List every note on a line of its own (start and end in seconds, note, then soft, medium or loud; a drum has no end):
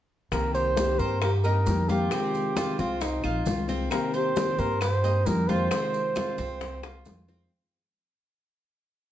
0.32 0.95 C2 medium
0.32 0.76 C3 medium
0.32 0.76 D#3 medium
0.32 0.76 A#3 medium
0.32 0.77 C4 medium
0.32 0.77 G4 medium
0.32 0.53 A#4 loud
0.32 high bongo medium
0.32 high conga soft
0.32 claves medium
0.32 maracas medium
0.55 0.98 G4 medium
0.55 1.00 C5 loud
0.55 high bongo soft
0.55 high conga soft
0.55 maracas soft
0.77 0.98 C3 medium
0.77 0.99 D#3 medium
0.77 0.99 A#3 medium
0.77 0.99 C4 medium
0.77 0.98 G4 medium
0.77 high bongo medium
0.77 high conga medium
0.77 maracas medium
0.99 1.63 G2 medium
0.99 1.21 A#3 soft
0.99 1.21 C4 soft
0.99 1.21 G4 soft
0.99 1.21 A#4 loud
0.99 1.21 C5 medium
0.99 high bongo soft
0.99 high conga soft
0.99 maracas soft
1.22 1.44 G4 medium
1.22 1.32 A#4 medium
1.22 muted nylon-string guitar stroke medium
1.22 high bongo medium
1.22 high conga soft
1.22 claves medium
1.22 maracas medium
1.44 1.66 A#3 soft
1.44 1.66 C4 soft
1.44 1.88 D#4 medium
1.44 1.66 G4 medium
1.44 1.91 A#4 medium
1.44 high bongo soft
1.44 high conga soft
1.44 maracas soft
1.66 2.07 F2 medium
1.66 1.88 D#3 medium
1.66 1.89 A#3 soft
1.66 1.88 C4 soft
1.66 1.87 G4 medium
1.66 high bongo soft
1.66 low bongo medium
1.66 high conga medium
1.66 maracas medium
1.88 2.10 D#3 medium
1.88 2.11 A#3 medium
1.88 2.10 C4 medium
1.88 2.11 F4 medium
1.88 2.10 G4 medium
1.88 2.81 G4 medium
1.88 high conga medium
1.88 maracas soft
2.11 2.54 C3 medium
2.11 2.55 D#3 medium
2.11 2.55 G#3 medium
2.11 2.55 C4 medium
2.11 2.56 F4 medium
2.11 high bongo medium
2.11 high conga soft
2.11 claves medium
2.11 maracas medium
2.34 high bongo soft
2.34 high conga soft
2.34 maracas soft
2.55 2.77 C3 medium
2.55 2.78 D#3 medium
2.55 2.78 G#3 medium
2.55 2.78 C4 medium
2.55 2.77 F4 medium
2.55 2.79 F4 medium
2.55 high bongo medium
2.55 high conga medium
2.55 claves medium
2.55 maracas medium
2.78 3.21 C2 medium
2.78 3.00 G#3 soft
2.78 3.23 C4 medium
2.78 3.00 C4 soft
2.78 3.00 F4 soft
2.78 3.03 F4 medium
2.78 high bongo soft
2.78 high conga soft
2.78 maracas soft
3.00 3.47 D#4 medium
3.00 muted nylon-string guitar stroke medium
3.00 high bongo medium
3.00 high conga soft
3.00 maracas medium
3.23 3.45 A#1 medium
3.23 3.45 G#3 soft
3.23 3.45 C4 soft
3.23 3.45 F4 soft
3.23 3.68 F4 medium
3.23 high bongo soft
3.23 high conga soft
3.23 claves medium
3.23 maracas soft
3.45 3.86 C2 medium
3.45 3.68 D#3 soft
3.45 3.68 G#3 soft
3.45 3.67 C4 soft
3.45 3.66 F4 medium
3.45 high bongo soft
3.45 low bongo medium
3.45 high conga medium
3.45 maracas medium
3.68 3.90 D#3 medium
3.68 3.90 G#3 medium
3.68 3.90 C4 medium
3.68 4.12 C4 medium
3.68 3.90 F4 medium
3.68 high conga soft
3.68 maracas soft
3.90 4.34 C3 medium
3.90 4.35 D#3 medium
3.90 4.35 A#3 medium
3.90 4.35 C4 medium
3.90 4.36 G4 medium
3.90 4.16 A#4 loud
3.90 high bongo medium
3.90 high conga soft
3.90 claves medium
3.90 maracas medium
4.14 4.58 G4 medium
4.14 4.61 C5 loud
4.14 high bongo soft
4.14 high conga soft
4.14 maracas soft
4.35 4.57 C3 medium
4.35 4.58 D#3 medium
4.35 4.58 A#3 medium
4.35 4.58 C4 medium
4.35 4.57 G4 medium
4.35 high bongo medium
4.35 high conga loud
4.35 maracas medium
4.58 5.22 G2 medium
4.58 4.81 A#3 soft
4.58 4.80 C4 soft
4.58 4.80 G4 soft
4.58 4.81 A#4 loud
4.58 4.80 C5 medium
4.58 high bongo soft
4.58 high conga soft
4.58 maracas soft
4.81 5.03 G4 medium
4.81 5.28 C5 loud
4.81 muted nylon-string guitar stroke medium
4.81 high bongo medium
4.81 high conga soft
4.81 claves medium
4.81 maracas medium
5.03 5.26 A#3 soft
5.03 5.26 C4 soft
5.03 5.47 D#4 medium
5.03 5.25 G4 soft
5.03 high bongo soft
5.03 high conga soft
5.03 maracas soft
5.26 5.66 F2 medium
5.26 5.48 D#3 soft
5.26 5.48 A#3 soft
5.26 5.48 C4 soft
5.26 5.48 G4 medium
5.26 5.50 A#4 medium
5.26 high bongo soft
5.26 low bongo medium
5.26 high conga medium
5.26 maracas medium
5.48 5.70 D#3 medium
5.48 5.71 A#3 medium
5.48 5.71 C4 medium
5.48 5.71 F4 medium
5.48 5.70 G4 medium
5.48 7.06 C5 loud
5.48 high conga medium
5.48 maracas soft
5.71 6.15 C3 medium
5.71 6.15 D#3 medium
5.71 6.15 G#3 medium
5.71 6.15 C4 medium
5.71 6.16 C4 medium
5.71 6.16 F4 medium
5.71 high bongo medium
5.71 high conga soft
5.71 claves medium
5.71 maracas medium
5.94 high bongo soft
5.94 high conga soft
5.94 maracas soft
6.16 6.38 C3 medium
6.16 6.38 D#3 medium
6.16 6.38 G#3 medium
6.16 6.38 C4 medium
6.16 6.38 F4 medium
6.16 high bongo medium
6.16 high conga loud
6.16 claves medium
6.16 maracas medium
6.38 7.02 C2 medium
6.38 6.61 G#3 soft
6.38 6.82 C4 medium
6.38 6.61 C4 soft
6.38 6.60 F4 medium
6.38 high bongo soft
6.38 high conga soft
6.38 maracas soft
6.61 muted nylon-string guitar stroke medium
6.61 high bongo medium
6.61 high conga soft
6.61 maracas medium
6.83 7.06 G#3 soft
6.83 7.06 C4 soft
6.83 7.27 F4 medium
6.83 7.06 F4 medium
6.83 high bongo loud
6.83 high conga soft
6.83 claves medium
6.83 maracas soft
7.05 7.46 F2 medium
7.05 7.28 D#3 medium
7.05 7.28 G#3 medium
7.05 7.29 C4 medium
7.05 7.28 F4 medium
7.05 high bongo medium
7.05 high conga medium
7.05 maracas medium
7.28 7.52 D#3 medium
7.28 7.51 G#3 medium
7.28 7.50 C4 medium
7.28 7.51 C4 medium
7.28 7.51 F4 medium
7.28 low bongo medium
7.28 high conga soft
7.28 maracas soft